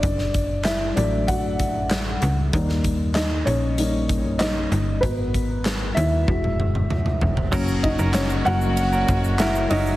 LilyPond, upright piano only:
<<
  \new Staff \with { instrumentName = "Upright piano" } { \time 4/4 \key fis \mixolydian \tempo 4 = 96 <d' d''>4 <e' e''>8 d''8 <fis' fis''>4. r8 | r4 <dis' dis''>8 <cis' cis''>4. <dis' dis''>4 | b'4. <e' e''>2 r8 | r8 <dis' dis''>8 <cis' cis''>8 <fis' fis''>4. <e' e''>8 <dis' dis''>8 | }
  \new Staff \with { instrumentName = "Upright piano" } { \time 4/4 \key fis \mixolydian r4. <fis a d'>8 r2 | <g ais dis'>4. r8 <g ais dis'>8 r4. | <b fis' ais'>4. r8 <gis e' fis'>4. r8 | <fis ais cis'>8 r4 <fis ais cis'>8 r2 | }
>>